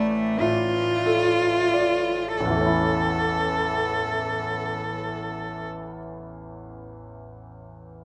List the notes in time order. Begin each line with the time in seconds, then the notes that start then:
Already playing: A1 A2 A3 D5
0.41 A2 F4
1.06 A4
1.74 D5
2.37 A1 A4
2.45 E2
2.50 E3
2.55 A3
2.61 C#4
2.66 E4